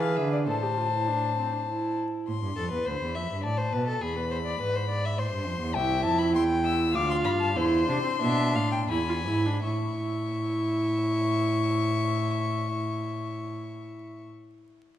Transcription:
Already playing: E3 G#4 B4
0.03 F5
0.17 D3 E5
0.32 D5
0.47 A2 A4 C5 A5
0.62 G4
0.77 F4
0.93 E4
1.08 D4
1.38 C4
1.53 D4
1.68 E4
2.28 A2 C6
2.43 G2
2.56 F2 A4
2.71 E2 B4
2.86 D2 C5 B5
3.02 E2
3.15 F2 E5
3.31 G2
3.43 A2 D5 A5
3.58 C5
3.72 B2 B4
3.87 A4
4.02 E2 G#4 B5
4.16 B4
4.31 C5
4.45 D5
4.60 G#2 B4
4.75 C5
4.89 D5
5.05 E5
5.18 A2 C5 C6
5.32 G2
5.46 F2
5.61 E2
5.74 C2 E4 E5 G5
6.05 F2 A5
6.18 B5
6.34 E2 G5 C6
6.65 E6
6.93 D2 F4 F5 D6
7.10 C6
7.24 G2 B5
7.41 A5
7.55 E2 E4 C5 C6
7.87 C3 D4
8.04 C4
8.20 B2 D4 E5
8.55 A2 F5
8.72 G5
8.90 E2 E4 G#5 B5
9.09 F4
9.27 G#2 E4
9.46 D4
9.64 A2 E4 E5 C#6

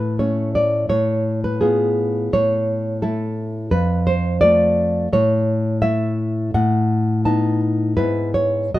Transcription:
Already playing: A2 B4
0.19 A3 C#4 C#5
0.55 D5
0.89 A2 C#5
1.44 B4
1.61 B3 F4 G#4
2.33 A2 C#5
3.02 A3 E4 A4
3.71 F2 B4
4.07 C5
4.41 A3 F4 D5
5.13 A2 C#5
5.82 A3 E4 E5
6.54 A2 F#5
7.25 B3 D#4 A5
7.97 G#2 B3 E4 B4
8.34 C#5
8.74 B2 A3 F#4 D#5

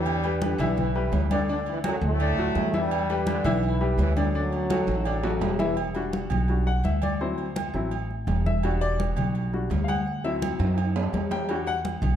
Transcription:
Already playing: E2 G2 E3 G3 E4 E5
0.06 high conga, low agogo
0.24 G3 G4 B4, high conga, low agogo
0.42 D3 G3 D4 G4 B4, high conga, low agogo
0.58 B1 E3 E4 E5, high conga, low conga, low agogo
0.77 E3 E4, high conga, low conga, low agogo
0.95 G3 G4 B4, high conga
1.12 D2, high conga, low timbale, low agogo
1.31 D3 D4 D5, high conga, low agogo
1.49 D3 D4 D5, high conga
1.66 E3 E4, high conga, low agogo
1.84 F#2 F#3 F#4 A4, high conga, low agogo
2.01 D2 A2 A3, high conga
2.20 D3 D4 D5, high conga, low agogo
2.37 D2 F#3 F#4 A4, high conga
2.55 E2, high conga, low timbale, low agogo
2.74 G2 E3 G3 E4 E5, high conga
2.91 high conga, low agogo
3.10 G3 G4 B4, high conga, low agogo
3.27 D3 G3 D4 G4 B4, high conga, low agogo
3.44 B1 E3 E4 E5, high conga, low conga, low agogo
3.63 E3 E4, high conga, low agogo
3.81 G3 G4 B4, high conga
3.98 D2 E3 E4, high conga, low timbale, low agogo
4.17 F#2 D3 F#3 D4 D5, high conga, low agogo
4.35 D3 D4 D5, high conga
4.52 high conga, low agogo
4.70 F#3 F#4 A4, high conga, high timbale, low agogo
4.87 A1, high conga, high timbale
5.05 D3 D4 D5, high conga, low agogo
5.23 F#3 F#4 A4, high conga, low timbale
5.41 E1, high conga, low timbale, low agogo
5.59 E3 E4 E5, high conga, low timbale
5.77 high conga, low agogo
5.95 G3 D4 F#4, high conga, low agogo
6.13 high conga, low agogo
6.30 B1, high conga, low conga, low agogo
6.48 G3 D4 F#4, high conga, low agogo
6.67 F#5, high conga
6.84 D2 E5, high conga, low agogo
7.02 D5, high conga, low agogo
7.21 F#3 C4 E4 C5, high conga
7.38 high conga, low agogo
7.56 high conga, low agogo
7.74 A1 F#3 C4 E4, high conga
7.91 high conga, low agogo
8.11 high conga
8.27 E1, high conga, low timbale, low agogo
8.46 E5, high conga
8.63 G3 D4 F#4, high conga, low agogo
8.81 D5, high conga, low agogo
8.99 high conga, low agogo
9.16 B1, high conga, low conga, low agogo
9.35 high conga, low agogo
9.53 G3 D4 F#4, high conga
9.70 D2, high conga, low timbale, low agogo
9.84 F5
9.88 F#5, high conga, low agogo
10.08 high conga
10.24 F#3 C4 E4 E5, high conga, low agogo
10.42 high conga, low agogo
10.59 F#2, high conga, high timbale
10.78 high conga, high timbale, low agogo
10.96 high conga, low timbale
11.13 E2, high conga, low timbale, low agogo
11.31 G5, high conga, low timbale
11.49 G3 D4 F#4, high conga, low agogo
11.67 F#5, high conga, low agogo
11.85 high conga, low agogo
12.02 B1, high conga, low conga, low agogo

